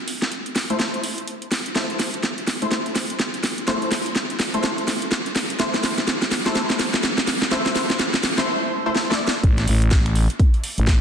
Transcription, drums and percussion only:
0.08 open hi-hat loud
0.22 snare medium
0.22 closed hi-hat medium
0.32 closed hi-hat medium
0.46 closed hi-hat soft
0.56 snare medium
0.56 open hi-hat loud
0.70 closed hi-hat soft
0.80 snare medium
0.80 closed hi-hat medium
0.94 closed hi-hat soft
1.04 open hi-hat loud
1.18 closed hi-hat medium
1.28 closed hi-hat medium
1.42 closed hi-hat soft
1.52 snare medium
1.52 open hi-hat loud
1.66 closed hi-hat soft
1.76 snare medium
1.76 closed hi-hat medium
1.90 closed hi-hat soft
1.99 snare medium
1.99 open hi-hat loud
2.14 closed hi-hat soft
2.23 snare medium
2.23 closed hi-hat medium
2.38 closed hi-hat soft
2.47 snare medium
2.47 open hi-hat loud
2.62 closed hi-hat soft
2.72 snare medium
2.72 closed hi-hat medium
2.86 closed hi-hat soft
2.96 snare medium
2.96 open hi-hat loud
3.10 closed hi-hat medium
3.20 snare medium
3.20 closed hi-hat medium
3.34 closed hi-hat soft
3.44 snare medium
3.44 open hi-hat loud
3.58 closed hi-hat soft
3.68 snare medium
3.68 closed hi-hat medium
3.82 closed hi-hat soft
3.92 snare medium
3.92 open hi-hat loud
4.06 closed hi-hat medium
4.16 snare medium
4.16 closed hi-hat medium
4.30 closed hi-hat soft
4.40 snare medium
4.40 open hi-hat loud
4.54 closed hi-hat medium
4.64 snare medium
4.64 closed hi-hat medium
4.78 closed hi-hat soft
4.88 snare medium
4.88 open hi-hat loud
5.02 closed hi-hat medium
5.12 snare medium
5.12 closed hi-hat medium
5.26 closed hi-hat soft
5.36 snare medium
5.36 open hi-hat loud
5.50 closed hi-hat medium
5.60 snare medium
5.60 closed hi-hat medium
5.74 snare medium
5.74 closed hi-hat soft
5.84 snare medium
5.84 open hi-hat loud
5.98 snare medium
5.98 closed hi-hat medium
6.08 snare medium
6.08 closed hi-hat medium
6.22 snare medium
6.22 closed hi-hat soft
6.32 snare loud
6.32 open hi-hat loud
6.46 snare medium
6.46 closed hi-hat medium
6.55 snare medium
6.55 closed hi-hat medium
6.70 snare medium
6.70 closed hi-hat soft
6.79 snare medium
6.79 open hi-hat loud
6.94 snare medium
6.94 closed hi-hat medium
7.03 snare loud
7.03 closed hi-hat medium
7.18 snare medium
7.18 closed hi-hat soft
7.27 snare loud
7.27 open hi-hat loud
7.42 snare medium
7.42 closed hi-hat medium
7.51 snare loud
7.51 closed hi-hat medium
7.66 snare medium
7.66 closed hi-hat soft
7.75 snare loud
7.75 open hi-hat loud
7.90 snare medium
7.90 closed hi-hat medium
7.99 snare loud
7.99 closed hi-hat medium
8.14 snare medium
8.14 closed hi-hat soft
8.23 snare loud
8.23 open hi-hat loud
8.38 snare loud
8.38 closed hi-hat medium
8.96 snare medium
9.12 snare medium
9.28 snare loud
9.44 kick loud
9.44 closed hi-hat medium
9.58 finger snap medium
9.58 snare soft
9.58 closed hi-hat soft
9.68 open hi-hat loud
9.82 closed hi-hat medium
9.91 kick loud
9.91 snare loud
9.91 closed hi-hat medium
10.06 finger snap medium
10.06 closed hi-hat soft
10.15 open hi-hat medium
10.30 closed hi-hat medium
10.39 kick loud
10.39 closed hi-hat medium
10.54 closed hi-hat soft
10.64 open hi-hat loud
10.78 closed hi-hat medium
10.87 kick loud
10.87 snare loud
10.87 closed hi-hat medium

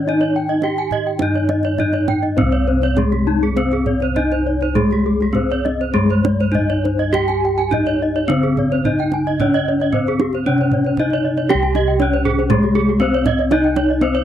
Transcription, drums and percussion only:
0.20 kendang slap soft
0.47 kendang slap soft
0.62 kendang high medium
0.77 kendang slap soft
0.91 kendang low soft
1.19 kendang high medium
1.19 kendang low medium
1.34 kendang slap soft
1.49 kendang high medium
1.63 kendang slap soft
1.78 kendang low medium
1.93 kendang slap soft
2.08 kendang high soft
2.08 kendang low medium
2.23 kendang slap soft
2.38 kendang low medium
2.82 kendang slap soft
2.97 kendang high medium
2.97 kendang low medium
3.12 kendang slap soft
3.57 kendang high medium
3.72 kendang slap soft
3.86 kendang low medium
4.00 kendang slap soft
4.16 kendang low medium
4.32 kendang slap soft
4.61 kendang slap soft
4.76 kendang low medium
4.91 kendang slap soft
5.20 kendang slap soft
5.35 kendang low medium
5.50 kendang slap soft
5.66 kendang high medium
6.10 kendang slap soft
6.25 kendang high medium
6.25 kendang low medium
6.40 kendang slap soft
6.55 kendang low medium
6.70 kendang slap soft
6.85 kendang high soft
6.99 kendang slap soft
7.14 kendang low medium
7.29 kendang slap soft
7.59 kendang slap soft
7.72 kendang high medium
7.72 kendang low medium
7.86 kendang slap soft
8.30 kendang high medium
8.44 kendang slap soft
8.57 kendang low medium
8.71 kendang slap soft
8.85 kendang low medium
8.99 kendang slap soft
9.12 kendang high medium
9.27 kendang slap soft
9.40 kendang low medium
9.54 kendang slap soft
9.80 kendang slap soft
9.93 kendang low medium
10.07 kendang slap soft
10.20 kendang high medium
10.33 kendang slap soft
10.58 kendang slap soft
10.71 kendang low medium
10.85 kendang slap soft
10.97 kendang low medium
11.10 kendang slap soft
11.37 kendang slap soft
11.50 kendang high medium
11.63 kendang slap soft
11.75 kendang slap soft
11.75 kendang high medium
12.00 kendang slap soft
12.00 kendang high medium
12.26 kendang low medium
12.39 kendang slap soft
12.50 kendang low loud
12.63 kendang slap soft
12.75 kendang slap soft
13.00 kendang slap soft
13.00 kendang low medium
13.26 kendang high medium
13.26 kendang low medium
13.39 kendang slap soft
13.51 kendang high medium
13.64 kendang slap soft
13.76 kendang slap soft
13.76 kendang high medium
14.01 kendang slap soft
14.01 kendang high medium

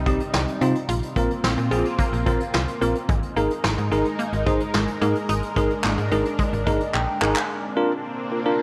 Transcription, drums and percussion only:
0.06 kick medium
0.06 closed hi-hat medium
0.20 closed hi-hat medium
0.33 snare loud
0.48 closed hi-hat medium
0.62 closed hi-hat medium
0.75 closed hi-hat medium
0.89 closed hi-hat medium
1.03 closed hi-hat medium
1.16 kick medium
1.16 closed hi-hat medium
1.30 closed hi-hat soft
1.44 snare loud
1.58 closed hi-hat medium
1.72 closed hi-hat medium
1.85 closed hi-hat medium
1.99 kick medium
1.99 closed hi-hat medium
2.13 closed hi-hat medium
2.26 kick medium
2.26 closed hi-hat medium
2.40 closed hi-hat medium
2.54 snare loud
2.68 closed hi-hat medium
2.82 closed hi-hat medium
2.95 closed hi-hat medium
3.09 kick loud
3.09 closed hi-hat medium
3.23 closed hi-hat medium
3.36 closed hi-hat medium
3.50 closed hi-hat soft
3.64 snare loud
3.78 closed hi-hat medium
3.92 closed hi-hat medium
4.05 closed hi-hat medium
4.19 closed hi-hat medium
4.33 closed hi-hat medium
4.46 kick medium
4.46 closed hi-hat medium
4.60 closed hi-hat medium
4.74 snare loud
4.88 closed hi-hat medium
5.02 closed hi-hat medium
5.15 closed hi-hat medium
5.29 closed hi-hat medium
5.43 closed hi-hat medium
5.56 kick medium
5.56 closed hi-hat medium
5.70 closed hi-hat soft
5.84 snare loud
5.84 clap medium
5.98 closed hi-hat medium
6.12 closed hi-hat medium
6.25 closed hi-hat medium
6.39 kick medium
6.39 closed hi-hat medium
6.53 closed hi-hat medium
6.67 kick medium
6.67 closed hi-hat medium
6.80 closed hi-hat medium
6.94 clap medium
7.22 clap medium
7.36 clap medium

